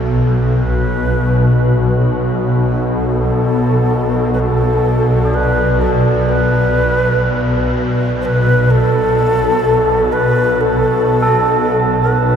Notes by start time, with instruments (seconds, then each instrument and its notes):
Already playing: synth drone B1 B2, shakuhachi A4
0.60 shakuhachi B4
2.98 shakuhachi A4
4.34 shakuhachi B4
4.39 shakuhachi A4
5.25 tubular bells D4
5.34 shakuhachi B4
5.81 shakuhachi A4
6.29 shakuhachi B4
8.22 shakuhachi B4 C5
8.70 shakuhachi A4
10.13 shakuhachi B4
10.61 shakuhachi A4
11.23 tubular bells A4
12.02 shakuhachi B4